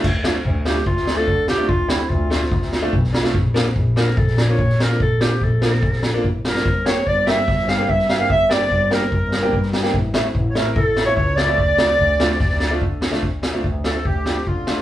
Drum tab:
CC |x---------------|----------------|----------------|----------------|
SD |--o---oo-oo---o-|--o---oo-oo--ooo|--o---oo-oo--oo-|--o---oo-oo---oo|
BD |o---o---o---o---|o---o---o---o---|o---o---o---o---|o---o---o---o---|

CC |----------------|----------------|----------------|----------------|
SD |--o---o-ooo--oo-|--oo--o---o--ooo|--o---o---o---o-|--o---ooooo---oo|
BD |o---o---o---o---|o---o---o---o---|o---o---o---o---|o---o---o---o---|

CC |----------------|
SD |--o---o---o---o-|
BD |o---o---o---o---|